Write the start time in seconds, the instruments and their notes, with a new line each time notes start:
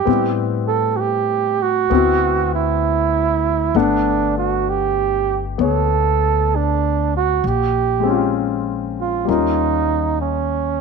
Already playing: flugelhorn G4
0.05 upright bass A2, grand piano B3 C4 E4
0.10 grand piano G3
0.68 flugelhorn A4
0.96 flugelhorn F#4 G4
1.62 flugelhorn F#4
1.90 upright bass D2, grand piano B3 C4 E4
1.96 grand piano F#4
2.55 flugelhorn E4
3.75 upright bass G1, grand piano A3 B3 D4 F#5, flugelhorn D4
4.38 flugelhorn F#4
4.69 flugelhorn G4
5.58 upright bass D2, grand piano B3 C#5
5.62 flugelhorn A4
6.56 flugelhorn D4
7.16 flugelhorn F#4
7.44 upright bass A#1, flugelhorn G4
8.00 grand piano G#3 C4
8.07 grand piano C#4 F4
9.01 flugelhorn F4
9.25 upright bass D#2, grand piano G3 A#3 C#4
9.29 flugelhorn D#4, grand piano F4
10.21 flugelhorn C#4